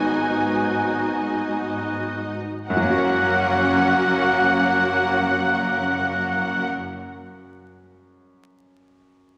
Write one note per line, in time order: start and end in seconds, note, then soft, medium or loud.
0.00 2.42 G#1 medium
0.00 2.42 G#2 medium
0.00 2.66 G#2 medium
0.00 2.69 D#3 soft
0.00 2.20 F#3 medium
0.00 2.20 B3 medium
0.00 2.21 D#4 medium
0.00 2.38 D#4 medium
0.00 2.41 D#4 medium
0.00 2.20 F#4 medium
0.00 2.41 F#4 medium
0.00 2.37 D#5 medium
0.00 1.98 G#5 medium
2.68 6.68 F#1 medium
2.68 6.68 F#2 medium
2.68 6.67 F#3 medium
2.68 6.67 A#3 medium
2.68 6.68 A#3 medium
2.68 6.69 C#4 medium
2.68 6.68 F#4 medium
2.68 6.69 F#4 medium
2.68 6.68 A#4 medium
2.68 6.66 F#5 medium
2.68 6.67 F#5 medium
2.68 6.67 F#6 medium
2.77 6.75 F#3 medium
2.84 6.82 A#3 medium
2.90 6.88 F#4 medium
2.98 6.96 C#5 medium
3.04 7.03 F#5 medium